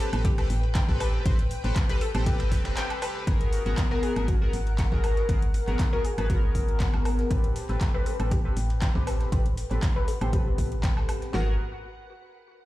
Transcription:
Already playing: string machine B4 G5
0.00 closed hi-hat
0.13 fm bass A1, analog polysynth C4 G4 A4 B4, closed hi-hat, high woodblock
0.25 synth arpeggio sound G4, kick, closed hi-hat
0.38 analog polysynth C4 G4 A4 B4, closed hi-hat, high woodblock
0.50 fm bass A1, snare, closed hi-hat, open hi-hat
0.63 closed hi-hat
0.75 synth arpeggio sound G5, kick, snare, clap, closed hi-hat
0.88 fm bass A1, analog polysynth C4 G4 A4 B4, kick, snare
1.00 synth arpeggio sound B4, snare, closed hi-hat, open hi-hat, high woodblock
1.14 snare
1.25 fm bass A1, analog polysynth C4 G4 A4 B4, synth arpeggio sound C5, kick, closed hi-hat
1.39 closed hi-hat
1.51 closed hi-hat, open hi-hat
1.64 fm bass A1, analog polysynth C4 G4 A4 B4, clap, closed hi-hat
1.76 kick, snare, clap, closed hi-hat
1.89 analog polysynth C4 G4 A4 B4, synth arpeggio sound B4, closed hi-hat
2.01 synth arpeggio sound A4, closed hi-hat, open hi-hat
2.14 fm bass A1, analog polysynth C4 G4 A4 C5, closed hi-hat, high woodblock
2.26 analog polysynth C4 G4 A4 B4, synth arpeggio sound G4, kick, snare, closed hi-hat
2.40 snare, closed hi-hat
2.52 fm bass E1, kick, snare, closed hi-hat, open hi-hat
2.65 analog polysynth C4 G4 A4 B4, snare, clap, closed hi-hat
2.77 synth arpeggio sound G5, snare, clap, closed hi-hat
2.90 snare, closed hi-hat, high woodblock
3.02 analog polysynth C4 G4 A4 B4, synth arpeggio sound B4, closed hi-hat, open hi-hat, high woodblock
3.16 snare
3.27 fm bass G#1, analog polysynth B3 F#4 G#4 A#4, string machine A#4 F#5, synth arpeggio sound B4, kick, closed hi-hat
3.41 closed hi-hat
3.52 snare, closed hi-hat, open hi-hat
3.66 fm bass G#1, analog polysynth B3 F#4 G#4 A#4, clap, closed hi-hat
3.78 kick, snare, clap, closed hi-hat
3.91 analog polysynth B3 F#4 G#4 A#4, synth arpeggio sound A#4
4.03 synth arpeggio sound G#4, closed hi-hat, open hi-hat
4.16 fm bass G#1, analog polysynth B3 F#4 G#4 A#4, closed hi-hat, high woodblock
4.28 synth arpeggio sound F#4, kick, closed hi-hat
4.41 analog polysynth B3 F#4 G#4 A#4
4.53 fm bass G#1, snare, closed hi-hat, open hi-hat
4.67 closed hi-hat
4.79 synth arpeggio sound F#5, kick, snare, clap, closed hi-hat
4.92 fm bass G#1, analog polysynth B3 F#4 G#4 A#4, kick, snare
5.04 synth arpeggio sound A#4, snare, closed hi-hat, open hi-hat, high woodblock
5.17 snare, closed hi-hat
5.29 fm bass G#1, analog polysynth B3 F#4 G#4 A#4, synth arpeggio sound B4, kick, closed hi-hat
5.42 closed hi-hat
5.54 closed hi-hat, open hi-hat
5.67 fm bass G#1, analog polysynth B3 F#4 G#4 A#4, clap, closed hi-hat
5.79 kick, snare, clap, closed hi-hat
5.93 analog polysynth B3 F#4 G#4 A#4, synth arpeggio sound A#4
6.05 synth arpeggio sound G#4, closed hi-hat, open hi-hat
6.18 fm bass G#1, analog polysynth B3 F#4 G#4 B4, closed hi-hat, high woodblock
6.29 analog polysynth B3 F#4 G#4 A#4, synth arpeggio sound F#4, kick, closed hi-hat
6.55 fm bass G#1, kick, closed hi-hat, open hi-hat
6.68 closed hi-hat
6.80 synth arpeggio sound F#5, kick, snare, clap, closed hi-hat
6.94 fm bass G#1, snare, high woodblock
7.05 synth arpeggio sound A#4, closed hi-hat, open hi-hat, high woodblock
7.19 snare, closed hi-hat
7.30 fm bass A1, analog polysynth C4 G4 A4 B4, string machine B4 G5, synth arpeggio sound C5, kick, closed hi-hat
7.44 closed hi-hat
7.56 snare, closed hi-hat, open hi-hat
7.69 fm bass A1, analog polysynth C4 G4 A4 B4, clap, closed hi-hat
7.81 kick, snare, clap, closed hi-hat
7.94 analog polysynth C4 G4 A4 B4, synth arpeggio sound B4
8.06 synth arpeggio sound A4, closed hi-hat, open hi-hat
8.19 fm bass A1, analog polysynth C4 G4 A4 B4, closed hi-hat, high woodblock
8.31 synth arpeggio sound G4, kick, closed hi-hat
8.45 analog polysynth C4 G4 A4 B4
8.57 fm bass A1, snare, closed hi-hat, open hi-hat
8.70 closed hi-hat
8.82 synth arpeggio sound G5, kick, snare, clap, closed hi-hat
8.95 fm bass A1, analog polysynth C4 G4 A4 B4, kick, snare
9.07 synth arpeggio sound B4, snare, closed hi-hat, open hi-hat, high woodblock
9.21 snare, closed hi-hat
9.32 fm bass A1, analog polysynth C4 G4 A4 B4, synth arpeggio sound C5, string machine F#5, kick, closed hi-hat
9.46 closed hi-hat
9.57 closed hi-hat, open hi-hat
9.71 fm bass A1, analog polysynth C4 G4 A4 B4, clap, closed hi-hat
9.83 kick, snare, clap, closed hi-hat
9.96 analog polysynth C4 G4 A4 B4, synth arpeggio sound B4
10.08 synth arpeggio sound A4, closed hi-hat, open hi-hat
10.21 fm bass A1, analog polysynth C4 G4 A4 C5, closed hi-hat, high woodblock
10.32 analog polysynth C4 G4 A4 B4, synth arpeggio sound G4, kick, closed hi-hat
10.58 fm bass A1, kick, closed hi-hat, open hi-hat
10.72 closed hi-hat
10.83 synth arpeggio sound G5, kick, snare, clap, closed hi-hat
10.97 fm bass A2, snare, high woodblock
11.09 synth arpeggio sound B4, closed hi-hat, open hi-hat, high woodblock
11.22 snare, closed hi-hat
11.33 fm bass G#1, analog polysynth B3 F#4 G#4 A#4, synth arpeggio sound F#4, snare

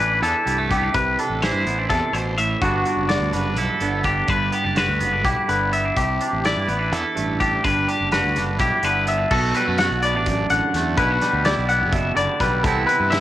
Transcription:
Already playing: clean electric guitar E3 E4
0.00 fingered electric bass A1, clean electric guitar D4 B4
0.22 fingered electric bass E2, clean electric guitar E4 A4, closed hi-hat
0.46 fingered electric bass C2, clean electric guitar G2 G3, closed hi-hat
0.58 clean electric guitar A3
0.69 clean electric guitar B3 G4, kick, closed hi-hat
0.83 clean electric guitar D4
0.94 fingered electric bass C2, clean electric guitar C3 B4, kick, closed hi-hat
1.19 clean electric guitar D4 A4, closed hi-hat
1.30 fingered electric bass A1
1.42 clean electric guitar E3 E4 C5, snare, closed hi-hat
1.53 fingered electric bass G2
1.65 fingered electric bass A1, clean electric guitar B3, closed hi-hat
1.78 clean electric guitar D4
1.89 fingered electric bass E2, clean electric guitar C3 A4, kick, closed hi-hat
2.13 fingered electric bass A1, clean electric guitar B2 C5, closed hi-hat
2.38 clean electric guitar A2 E5, closed hi-hat
2.62 fingered electric bass G1, clean electric guitar G2 D3 B3 D4 F#4, kick, closed hi-hat
2.86 clean electric guitar D4, closed hi-hat
2.97 fingered electric bass F#1
3.08 clean electric guitar D3 F#4 D5, snare, closed hi-hat
3.21 fingered electric bass D2
3.33 fingered electric bass F#1, clean electric guitar D4 B4, closed hi-hat
3.57 fingered electric bass B1, clean electric guitar E4 A4, closed hi-hat
3.80 fingered electric bass G1, clean electric guitar D3 B3, closed hi-hat
4.04 clean electric guitar D4 G4, kick, closed hi-hat
4.27 fingered electric bass G1, clean electric guitar G2 B4, kick, closed hi-hat
4.52 clean electric guitar B3 G4, closed hi-hat
4.64 fingered electric bass F#1, clean electric guitar D4
4.76 clean electric guitar D3 F#4 B4, snare, closed hi-hat
4.89 fingered electric bass D2
5.00 fingered electric bass F#1, clean electric guitar B3, closed hi-hat
5.13 clean electric guitar D4
5.24 fingered electric bass B1, clean electric guitar E4 G4, kick, closed hi-hat
5.48 fingered electric bass G1, clean electric guitar D3 B3 B4, closed hi-hat
5.72 clean electric guitar B3 E5, closed hi-hat
5.85 clean electric guitar D4
5.96 fingered electric bass C2, clean electric guitar C3 G4, kick, closed hi-hat
6.21 clean electric guitar D4, closed hi-hat
6.33 fingered electric bass A1
6.44 clean electric guitar E3 E4 D5, snare, closed hi-hat
6.56 fingered electric bass G2
6.67 fingered electric bass A1, clean electric guitar B3 B4, closed hi-hat
6.79 clean electric guitar D4
6.92 fingered electric bass E2, clean electric guitar E4 A4, closed hi-hat
7.15 fingered electric bass A1, clean electric guitar G2 A3, closed hi-hat
7.40 clean electric guitar D4 G4, kick, closed hi-hat
7.64 fingered electric bass G1, clean electric guitar G2 B4, kick, closed hi-hat
7.88 clean electric guitar D4 G4, closed hi-hat
8.00 fingered electric bass F#1
8.12 clean electric guitar D3 F#4 B4, snare, closed hi-hat
8.24 fingered electric bass D2
8.36 fingered electric bass F#1, clean electric guitar D4, snare, closed hi-hat
8.59 fingered electric bass B1, clean electric guitar E4 G4, kick, closed hi-hat
8.83 fingered electric bass G1, clean electric guitar D3 B3 B4, closed hi-hat
9.07 clean electric guitar B3 E5, closed hi-hat
9.18 clean electric guitar D4
9.30 fingered electric bass B1, clean electric guitar B2 F#4 A4, kick, crash
9.54 clean electric guitar G3 B4, closed hi-hat
9.68 fingered electric bass F#2, clean electric guitar A3
9.78 clean electric guitar F#4 F#5, snare, closed hi-hat
9.91 fingered electric bass B1
10.02 clean electric guitar B3 D5, closed hi-hat
10.14 fingered electric bass A1, clean electric guitar D4
10.26 clean electric guitar F#2, kick, closed hi-hat
10.50 fingered electric bass A1, clean electric guitar D3 F#5, closed hi-hat
10.74 fingered electric bass E2, clean electric guitar A3, snare, closed hi-hat
10.97 fingered electric bass B1, clean electric guitar B2 E4 B4, kick, closed hi-hat
11.11 clean electric guitar F#4
11.21 clean electric guitar G3, snare, closed hi-hat
11.33 fingered electric bass D2
11.45 clean electric guitar E4 D5, snare, closed hi-hat
11.57 fingered electric bass B1
11.69 clean electric guitar B3 F#5, closed hi-hat
11.81 fingered electric bass F#1
11.91 clean electric guitar B2 E5, kick, closed hi-hat
12.14 fingered electric bass F#1, clean electric guitar D3 D5, closed hi-hat
12.40 fingered electric bass B1, clean electric guitar G3 B4, kick, snare, closed hi-hat
12.63 fingered electric bass C2, clean electric guitar C3 E3 B3 C4 E4 A4, kick, closed hi-hat
12.87 clean electric guitar B4, closed hi-hat
13.00 fingered electric bass G2
13.10 clean electric guitar E4 E5, snare, closed hi-hat

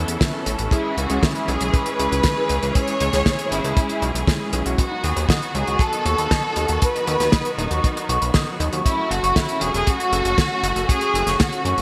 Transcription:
Already playing: string section E3 B3 C#4 A4, electric grand piano B3 C#4 E4 A4, violin section E4
0.08 analog synth bass E2, closed hi-hat
0.21 kick, snare, closed hi-hat
0.34 electric grand piano B3 C#4 E4 A4
0.46 analog synth bass A1, closed hi-hat
0.59 analog synth bass A1, closed hi-hat
0.71 string section G#3 G#4, electric grand piano G#3 C#4 E4 G#4, violin section E4, kick, closed hi-hat
0.97 analog synth bass C#2, violin section F#4, closed hi-hat
1.10 analog synth bass C#2, electric grand piano G#3 C#4 E4 G#4, closed hi-hat
1.23 violin section E4, kick, snare, closed hi-hat
1.35 closed hi-hat
1.48 analog synth bass B1, electric grand piano G#3 C#4 E4 G#4, violin section G#4, closed hi-hat
1.61 analog synth bass B1, closed hi-hat
1.74 violin section B4, kick, closed hi-hat
1.86 closed hi-hat
1.99 analog synth bass C#2, electric grand piano G#3 C#4 E4 G#4, closed hi-hat
2.12 analog synth bass C#2, closed hi-hat
2.23 kick, snare, closed hi-hat
2.37 electric grand piano G#3 C#4 E4 G#4
2.49 analog synth bass C#2, closed hi-hat
2.62 analog synth bass C#2, closed hi-hat
2.75 electric grand piano G#3 C#4 E4 G#4, violin section C#5, kick, closed hi-hat
2.88 closed hi-hat
3.00 analog synth bass C#2, closed hi-hat
3.13 analog synth bass C#2, electric grand piano G#3 C#4 E4 G#4, snare, closed hi-hat
3.26 kick, snare, closed hi-hat
3.39 closed hi-hat
3.51 analog synth bass G#1, electric grand piano G#3 C#4 E4 G#4, violin section E4, closed hi-hat
3.64 analog synth bass C#2, closed hi-hat
3.77 kick, closed hi-hat
3.89 closed hi-hat
4.02 analog synth bass B1, closed hi-hat
4.15 analog synth bass B1, closed hi-hat
4.27 electric grand piano G#3 C#4 E4 G#4, kick, snare, closed hi-hat
4.53 analog synth bass B1, electric grand piano G#3 C#4 E4 G#4, closed hi-hat
4.66 analog synth bass B1, electric grand piano G#3 C#4 E4 F#4, closed hi-hat
4.78 string section D#3 F#3 B3 F#4, clean electric guitar B3, violin section F#4, kick, closed hi-hat
4.91 clean electric guitar D#4
5.04 analog synth bass D#2, clean electric guitar F#4, violin section G#4, closed hi-hat
5.17 analog synth bass D#2, clean electric guitar B4, closed hi-hat
5.29 violin section F#4, clean electric guitar D#5, kick, snare, closed hi-hat
5.42 clean electric guitar B3, closed hi-hat
5.55 analog synth bass C#2, clean electric guitar D#4, violin section G#4, closed hi-hat
5.67 analog synth bass C#2, clean electric guitar F#4, closed hi-hat
5.79 clean electric guitar B3, violin section A4, kick, closed hi-hat
5.93 clean electric guitar D#4, closed hi-hat
6.05 analog synth bass D#2, clean electric guitar F#4, closed hi-hat
6.18 analog synth bass D#2, clean electric guitar B4, closed hi-hat
6.31 clean electric guitar D#5, kick, snare, closed hi-hat
6.44 clean electric guitar B3
6.56 analog synth bass D#2, clean electric guitar D#4, closed hi-hat
6.68 analog synth bass D#2, clean electric guitar F#4, closed hi-hat
6.82 clean electric guitar B3, violin section B4, kick, closed hi-hat
6.95 clean electric guitar D#4, closed hi-hat
7.07 analog synth bass D#2, clean electric guitar F#4, closed hi-hat
7.20 analog synth bass D#2, clean electric guitar B4, snare, closed hi-hat
7.32 clean electric guitar D#5, kick, snare, closed hi-hat
7.45 clean electric guitar B3, closed hi-hat
7.58 analog synth bass D#1, violin section D#4, clean electric guitar D#4, closed hi-hat
7.71 analog synth bass D#2, clean electric guitar F#4, closed hi-hat
7.84 clean electric guitar B3, kick, closed hi-hat
7.96 clean electric guitar D#4, closed hi-hat
8.09 analog synth bass B1, clean electric guitar F#4, closed hi-hat
8.22 analog synth bass B1, clean electric guitar B4, closed hi-hat
8.34 clean electric guitar D#5, kick, snare, closed hi-hat
8.47 clean electric guitar B3
8.60 analog synth bass D#2, clean electric guitar D#4, closed hi-hat
8.73 analog synth bass D#2, clean electric guitar F#4, closed hi-hat
8.85 string section A3 C#4 F#4, clean electric guitar C#4, violin section E4, kick, closed hi-hat
8.98 clean electric guitar F#4
9.11 analog synth bass F#1, violin section F#4, clean electric guitar A4, closed hi-hat
9.23 analog synth bass F#1, clean electric guitar C#5, closed hi-hat
9.36 violin section E4, clean electric guitar F#5, kick, snare, closed hi-hat
9.49 clean electric guitar C#4, closed hi-hat
9.61 analog synth bass E1, clean electric guitar F#4, violin section G#4, closed hi-hat
9.74 analog synth bass E1, violin section G#4, clean electric guitar A4, closed hi-hat
9.87 clean electric guitar C#4, violin section F#4, kick, closed hi-hat
10.00 clean electric guitar F#4, closed hi-hat
10.12 analog synth bass F#1, clean electric guitar A4, closed hi-hat
10.25 analog synth bass F#1, clean electric guitar C#5, closed hi-hat
10.38 clean electric guitar F#5, kick, snare, closed hi-hat
10.51 clean electric guitar C#4
10.63 analog synth bass F#1, clean electric guitar F#4, closed hi-hat
10.76 analog synth bass F#1, clean electric guitar A4, closed hi-hat
10.89 clean electric guitar C#4, violin section G#4, kick, closed hi-hat
11.01 clean electric guitar F#4, closed hi-hat
11.14 analog synth bass F#1, clean electric guitar A4, closed hi-hat
11.27 analog synth bass F#1, clean electric guitar C#5, snare, closed hi-hat
11.40 violin section F#4, clean electric guitar F#5, kick, snare, closed hi-hat
11.52 clean electric guitar C#4, closed hi-hat
11.65 analog synth bass F#2, violin section C#4, clean electric guitar F#4, closed hi-hat
11.78 analog synth bass F#1, clean electric guitar A4, closed hi-hat

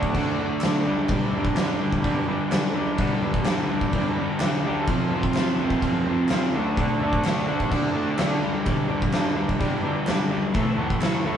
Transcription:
Already playing: overdriven electric guitar D3 A3 D4
0.03 kick
0.09 transistor combo organ A4 D5 F#5
0.15 overdriven electric guitar D3 A3 D4, kick, crash
0.32 transistor combo organ A4 D5 F#5
0.40 overdriven electric guitar D3 A3 D4
0.58 transistor combo organ A4 D5 E5, clap
0.62 overdriven electric guitar D3 A3 D4, snare, crash
0.80 transistor combo organ B4 D5 G5
0.86 overdriven electric guitar G2 D3 G3
1.08 overdriven electric guitar G2 D3, kick, crash
1.13 overdriven electric guitar G3
1.28 transistor combo organ B4 D5 E5
1.36 overdriven electric guitar G2 D3 G3
1.45 kick
1.54 transistor combo organ B4 D5 F#5, snare, clap, crash
1.58 overdriven electric guitar G2 D3 G3
1.76 overdriven electric guitar G2, transistor combo organ B4 D5 G5
1.81 overdriven electric guitar D3 G3
1.92 kick
2.00 overdriven electric guitar G2, transistor combo organ B4 D5 G5, crash
2.04 overdriven electric guitar D3 G3, kick
2.25 overdriven electric guitar G2 D3, transistor combo organ B4 D5 G5
2.29 overdriven electric guitar G3
2.47 transistor combo organ B4 D5 F#5
2.51 overdriven electric guitar G2 D3 G3, snare, clap, crash
2.73 overdriven electric guitar G2 D3 G3, transistor combo organ B4 D5 G5
2.96 overdriven electric guitar G2 D3 G3, transistor combo organ B4 D5 F#5, kick, crash
3.21 overdriven electric guitar G2 D3 G3, transistor combo organ B4 D5 A5
3.34 kick
3.42 overdriven electric guitar G2, transistor combo organ B4 D5 G5, snare, clap, crash
3.47 overdriven electric guitar D3 G3
3.67 overdriven electric guitar G2 D3 G3, transistor combo organ B4 D5 G5
3.81 kick
3.89 transistor combo organ B4 D5 G5
3.93 overdriven electric guitar G2 D3 G3, kick, crash
4.13 transistor combo organ B4 D5 G5 B5
4.17 overdriven electric guitar G2 D3 G3
4.37 overdriven electric guitar G2, transistor combo organ B4 D5 G5, clap, crash
4.41 overdriven electric guitar D3 G3, snare
4.59 transistor combo organ B4 D5 G5
4.65 overdriven electric guitar G2 D3 G3
4.83 transistor combo organ A4 C5 F5
4.87 overdriven electric guitar F2 C3 F3, kick, crash
5.03 transistor combo organ A4 C5 F5
5.11 overdriven electric guitar F2 C3 F3
5.23 kick
5.30 transistor combo organ A4 C5 F5, clap
5.35 overdriven electric guitar F2 C3 F3, snare, crash
5.55 transistor combo organ A4 C5 G5
5.60 overdriven electric guitar F2 C3 F3
5.70 kick
5.79 overdriven electric guitar F2, transistor combo organ A4 C5 F5, kick, crash
5.83 overdriven electric guitar C3 F3
6.02 transistor combo organ A4 C5 G5
6.07 overdriven electric guitar F2 C3 F3
6.26 transistor combo organ A4 C5 F5, clap, crash
6.30 overdriven electric guitar F2 C3 F3, snare
6.50 transistor combo organ A4 D5 F#5
6.55 overdriven electric guitar D3 A3 D4
6.77 overdriven electric guitar D3 A3 D4, kick, crash
6.98 overdriven electric guitar D3, transistor combo organ A4 D5 E5
7.02 overdriven electric guitar A3 D4
7.13 kick
7.22 overdriven electric guitar D3, transistor combo organ A4 D5 F#5, clap, crash
7.26 overdriven electric guitar A3 D4, snare
7.43 overdriven electric guitar D3, transistor combo organ A4 D5 F#5
7.47 overdriven electric guitar A3 D4
7.60 kick
7.68 overdriven electric guitar D3 A3, transistor combo organ A4 D5 F#5, kick, crash
7.72 overdriven electric guitar D4
7.91 transistor combo organ A4 D5 F#5 A5
7.96 overdriven electric guitar D3 A3 D4
8.14 overdriven electric guitar D3, transistor combo organ A4 D5 E5 G5, crash
8.19 overdriven electric guitar A3 D4, snare, clap
8.41 overdriven electric guitar G2 D3 G3, transistor combo organ B4 D5 G5
8.64 overdriven electric guitar G2 D3 G3, kick, crash
8.86 overdriven electric guitar G2 D3 G3, transistor combo organ B4 D5 G5
9.02 kick
9.12 overdriven electric guitar G2 D3 G3, transistor combo organ B4 D5 G5, snare, clap, crash
9.36 overdriven electric guitar G2 D3 G3, transistor combo organ B4 D5 G5
9.49 kick
9.58 overdriven electric guitar G2 D3 G3, transistor combo organ B4 D5 G5, kick, crash
9.81 overdriven electric guitar G2 D3 G3, transistor combo organ B4 D5 G5
10.06 overdriven electric guitar G2 D3 G3, transistor combo organ B4 D5 F#5, snare, clap, crash
10.29 overdriven electric guitar G2 D3 G3, transistor combo organ B4 D5 G5
10.53 overdriven electric guitar A2 E3 A3, transistor combo organ A4 C#5 E5, kick, crash
10.77 overdriven electric guitar A2 E3 A3, transistor combo organ A4 C#5 F#5
10.90 kick
11.00 overdriven electric guitar A2 E3 A3, transistor combo organ A4 C#5 E5, snare, clap, crash
11.25 overdriven electric guitar A2 E3 A3, transistor combo organ A4 C#5 E5 B5

